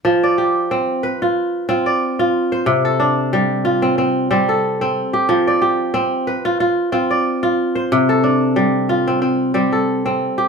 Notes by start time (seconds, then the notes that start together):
0.05 F3
0.23 D5
0.38 G4
0.71 C4
1.03 B4
1.22 F4
1.69 C4 F4
1.86 D5
2.19 F4
2.52 C5
2.66 C3
2.85 A4
3.00 D4
3.33 G3
3.65 F4
3.82 C4
3.98 C4
4.31 G3 C4
4.49 A4
4.81 C4
5.13 G4
5.29 F3
5.47 D5
5.62 G4
5.94 C4
6.27 B4
6.45 F4
6.60 F4
6.92 C4 F4
7.11 D5
7.43 F4
7.75 C5
7.92 C3
8.09 A4
8.24 D4
8.56 G3
8.89 F4
9.07 C4
9.22 C4
9.54 G3 C4
9.72 A4
10.06 C4
10.38 G4